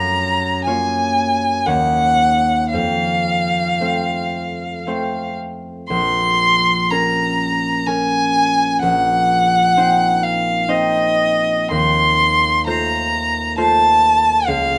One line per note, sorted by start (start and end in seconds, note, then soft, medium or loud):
0.00 1.73 F#2 medium
0.00 0.66 F4 soft
0.00 1.73 F5 soft
0.00 0.64 A#5 medium
0.65 1.66 A#3 soft
0.65 1.73 F4 soft
0.65 1.67 C#5 soft
0.65 1.68 G#5 medium
1.66 2.78 D#2 soft
1.66 2.78 A#3 soft
1.66 2.78 D#4 soft
1.66 2.78 C#5 soft
1.66 2.71 F#5 medium
2.72 5.94 F2 soft
2.72 5.33 F5 medium
3.80 4.86 A3 soft
3.80 4.86 C4 soft
3.80 4.86 C5 soft
4.87 5.94 A3 soft
4.87 5.94 C4 soft
4.87 5.95 C5 soft
5.88 8.81 A#1 medium
5.88 6.92 C6 medium
6.90 7.86 C#4 soft
6.90 7.86 A#4 soft
6.90 7.87 A#5 medium
7.86 8.86 C#4 soft
7.86 8.86 A#4 soft
7.86 8.81 G#5 medium
8.82 11.74 A#1 medium
8.82 10.24 F#5 medium
9.77 10.67 C4 soft
9.77 10.68 D#4 soft
9.77 10.68 C5 soft
10.23 10.71 F5 medium
10.68 14.50 C4 soft
10.68 14.50 D#4 soft
10.68 12.66 C5 soft
10.68 11.70 D#5 medium
11.71 14.51 D#2 medium
11.71 12.64 C6 medium
12.66 13.56 A3 soft
12.66 13.56 F4 soft
12.66 13.57 C5 soft
12.66 13.55 A#5 medium
13.57 14.51 A3 soft
13.57 14.78 F4 soft
13.57 14.51 C5 soft
13.57 14.49 A5 medium
14.48 14.78 C#2 medium
14.48 14.78 F5 medium